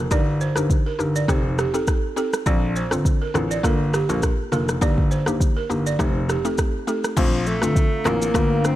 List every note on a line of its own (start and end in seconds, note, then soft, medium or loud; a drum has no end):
0.11 0.46 G1 loud
0.11 0.53 D4 loud
0.11 0.53 D#4 medium
0.11 0.53 G4 medium
0.11 0.53 A#4 loud
0.11 0.24 D5 loud
0.11 kick loud
0.11 shaker medium
0.41 0.53 C5 medium
0.41 shaker medium
0.56 0.67 G1 medium
0.56 0.96 D4 medium
0.56 0.96 D#4 medium
0.56 0.96 G4 medium
0.56 0.96 A#4 medium
0.56 cross-stick medium
0.56 shaker medium
0.70 kick loud
0.70 shaker medium
0.86 0.97 A#4 medium
0.99 1.22 G1 medium
0.99 1.26 D4 medium
0.99 1.26 D#4 medium
0.99 1.26 G4 medium
0.99 1.27 A#4 medium
0.99 shaker soft
1.16 1.26 D5 medium
1.16 shaker medium
1.28 1.63 F1 loud
1.28 1.70 C4 medium
1.28 1.70 D#4 medium
1.28 1.70 G4 medium
1.28 1.71 A4 loud
1.28 1.41 C5 medium
1.28 kick loud
1.28 cross-stick medium
1.28 shaker medium
1.58 1.71 G4 medium
1.58 cross-stick medium
1.58 shaker medium
1.74 2.13 C4 medium
1.74 2.14 D#4 medium
1.74 2.14 G4 medium
1.74 2.14 A4 medium
1.74 1.85 A4 medium
1.74 shaker medium
1.87 kick medium
1.87 cross-stick medium
1.87 shaker medium
2.16 2.44 C4 medium
2.16 2.44 D#4 medium
2.16 2.44 G4 medium
2.16 2.44 A4 medium
2.16 2.30 A4 medium
2.16 shaker medium
2.33 cross-stick medium
2.33 shaker medium
2.46 2.81 A#1 loud
2.46 2.88 C4 medium
2.46 2.88 D4 medium
2.46 2.88 F4 medium
2.46 2.88 A4 loud
2.46 2.59 D5 loud
2.46 kick loud
2.46 shaker medium
2.76 2.88 C5 medium
2.76 shaker medium
2.91 3.02 G1 medium
2.91 3.31 C4 medium
2.91 3.31 D4 medium
2.91 3.31 F4 medium
2.91 3.31 A4 medium
2.91 cross-stick medium
2.91 shaker medium
3.05 kick loud
3.05 shaker medium
3.22 3.32 A#4 medium
3.34 3.57 A1 medium
3.34 3.62 C4 medium
3.34 3.62 D4 medium
3.34 3.62 F4 medium
3.34 3.62 A4 medium
3.34 cross-stick loud
3.34 shaker soft
3.51 3.61 D5 medium
3.51 shaker medium
3.63 3.98 G1 loud
3.63 4.05 A#3 medium
3.63 4.05 D4 medium
3.63 4.06 F4 medium
3.63 4.06 A4 loud
3.63 3.77 A#4 medium
3.63 kick loud
3.63 cross-stick medium
3.63 shaker medium
3.93 4.06 G4 medium
3.93 cross-stick medium
3.93 shaker medium
4.09 4.19 A#1 medium
4.09 4.49 A#3 medium
4.09 4.49 D4 medium
4.09 4.49 F4 medium
4.09 4.49 A4 medium
4.09 4.20 A#4 medium
4.09 shaker medium
4.22 kick medium
4.22 cross-stick medium
4.22 shaker medium
4.52 4.74 F1 medium
4.52 4.79 A#3 medium
4.52 4.79 D4 medium
4.52 4.79 F4 medium
4.52 4.80 A4 medium
4.52 4.65 A#4 medium
4.52 shaker medium
4.69 cross-stick medium
4.69 shaker medium
4.81 5.16 G1 loud
4.81 5.23 A#3 medium
4.81 5.23 D4 medium
4.81 5.23 D#4 medium
4.81 5.24 G4 loud
4.81 4.94 D5 loud
4.81 kick loud
4.81 shaker medium
4.98 kick medium
5.11 5.24 C5 medium
5.11 shaker medium
5.26 5.37 G1 medium
5.26 5.66 A#3 medium
5.26 5.67 D4 medium
5.26 5.67 D#4 medium
5.26 5.67 G4 medium
5.26 cross-stick medium
5.26 shaker medium
5.40 kick loud
5.40 shaker medium
5.57 5.67 A#4 medium
5.70 5.92 G1 medium
5.70 5.97 A#3 medium
5.70 5.97 D4 medium
5.70 5.97 D#4 medium
5.70 5.97 G4 medium
5.70 shaker soft
5.86 5.99 D5 medium
5.86 shaker medium
5.99 6.34 F1 loud
5.99 6.41 A3 medium
5.99 6.41 C4 medium
5.99 6.41 D#4 medium
5.99 6.41 G4 loud
5.99 6.12 C5 medium
5.99 kick loud
5.99 cross-stick medium
5.99 shaker medium
6.29 6.41 G4 medium
6.29 cross-stick medium
6.29 shaker medium
6.45 6.84 A3 medium
6.45 6.84 C4 medium
6.45 6.84 D#4 medium
6.45 6.84 G4 medium
6.45 6.55 A4 medium
6.45 shaker medium
6.58 kick medium
6.58 cross-stick medium
6.58 shaker medium
6.87 7.15 A3 medium
6.87 7.15 C4 medium
6.87 7.15 D#4 medium
6.87 7.15 G4 medium
6.87 7.00 A4 medium
6.87 shaker medium
7.04 cross-stick medium
7.04 shaker medium
7.17 7.52 A#1 loud
7.17 7.49 F3 loud
7.17 8.33 A3 medium
7.17 7.58 A3 loud
7.17 7.58 C4 medium
7.17 8.76 D4 medium
7.17 7.59 D4 medium
7.17 7.59 F4 loud
7.17 8.76 F5 medium
7.17 8.33 A#5 medium
7.17 kick loud
7.17 crash loud
7.17 shaker medium
7.47 8.08 A3 loud
7.47 shaker medium
7.62 7.73 G1 medium
7.62 8.02 A3 medium
7.62 8.02 C4 medium
7.62 8.02 D4 medium
7.62 8.02 F4 medium
7.62 cross-stick medium
7.62 shaker medium
7.76 kick loud
7.76 shaker medium
8.05 8.28 A1 medium
8.05 8.32 A3 medium
8.05 8.67 A#3 loud
8.05 8.32 C4 medium
8.05 8.33 D4 medium
8.05 8.33 F4 medium
8.05 cross-stick loud
8.05 clap loud
8.05 shaker soft
8.22 shaker medium
8.34 8.69 G1 loud
8.34 8.76 A3 medium
8.34 8.76 A#3 medium
8.34 8.76 D4 medium
8.34 8.76 F4 loud
8.34 8.76 G4 medium
8.34 8.76 A#5 medium
8.34 kick loud
8.34 cross-stick loud
8.34 shaker medium
8.65 8.76 C4 loud
8.65 cross-stick medium
8.65 shaker medium